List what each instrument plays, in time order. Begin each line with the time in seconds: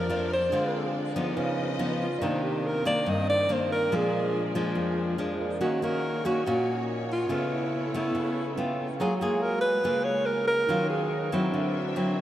Already playing: nylon-string guitar F2, tine electric piano A#3 D4 F5 A5, string section F4 D5, alto saxophone A#4
0.09 nylon-string guitar F3 A3 D4
0.33 alto saxophone C5
0.50 nylon-string guitar D3 G#3 C4 F4, string section C4 F4 G#4, tine electric piano D4 G#4 C5
0.56 tine electric piano F5
1.16 nylon-string guitar F3 B3 D#4
1.34 nylon-string guitar C#3, string section C#4 B4 D#5, tine electric piano D#4 B4
1.39 tine electric piano C#5 F5
1.79 nylon-string guitar F3 B3 D#4
2.03 alto saxophone F4
2.18 nylon-string guitar C3 D#3 A#3, string section C4 A#4, tine electric piano A#4 D5
2.23 nylon-string guitar D4, alto saxophone D#4, tine electric piano D#4 C5
2.43 alto saxophone G4
2.66 alto saxophone A#4
2.85 nylon-string guitar D#3 A#3 D4, alto saxophone D5
3.06 nylon-string guitar G2, alto saxophone D#5
3.27 tine electric piano D#4 A#4 C5 D5, alto saxophone D5
3.49 nylon-string guitar D#3 A#3 D4, alto saxophone C5
3.72 alto saxophone A#4
3.88 nylon-string guitar A#2, string section A#3 F4 G#4, tine electric piano D4 G#4 A#4
3.92 nylon-string guitar F3 G#3 D4, alto saxophone G#4, tine electric piano F5
4.55 nylon-string guitar F3 G#3 D4
4.75 nylon-string guitar F2
5.18 nylon-string guitar F3 G#3 D4
5.39 tine electric piano D4 G#4 A#4 D5
5.59 nylon-string guitar D#3 A#3 C#4 F#4, string section A#3 D#4 F#4 C#5, tine electric piano C#4 F#4, alto saxophone F#4
5.63 tine electric piano A#4 D#5
5.82 nylon-string guitar A#3 C#4 F#4, alto saxophone A#4
6.25 nylon-string guitar A#3 C#4 F#4, alto saxophone F#4
6.46 nylon-string guitar A#2 A#3 C#4 F#4, alto saxophone F#4
7.12 alto saxophone F4
7.29 nylon-string guitar C#3 A3 B3, string section B3 E4 A4, tine electric piano C#4 A4 B4
7.35 tine electric piano F6
7.53 alto saxophone E4
7.94 nylon-string guitar A3 B3, alto saxophone E4
8.15 nylon-string guitar C#3
8.56 nylon-string guitar A3 B3 F4, tine electric piano C#4 A4 B4 G5
8.96 nylon-string guitar F#3, string section G#3 G#4, alto saxophone F#4, tine electric piano G#4 F5
9.01 nylon-string guitar A#3 F4 G#4, tine electric piano F#4 A#5
9.20 nylon-string guitar A#3 F4 G#4, alto saxophone G#4
9.42 alto saxophone A#4
9.61 alto saxophone B4
9.84 nylon-string guitar C#3 A#3 F4 G#4
10.04 alto saxophone C#5
10.26 alto saxophone A#4
10.47 alto saxophone A#4
10.67 nylon-string guitar D#3 F#3 C#4 F4, tine electric piano D#4, string section D#4 C#5
10.71 tine electric piano C#5 F5
10.90 alto saxophone G#4
11.32 nylon-string guitar F#3 C4 E4, alto saxophone F#4
11.52 nylon-string guitar D3, string section D4 C5 E5, tine electric piano D4 F#4 C5
11.57 tine electric piano E5
11.96 nylon-string guitar F#3 C4 E4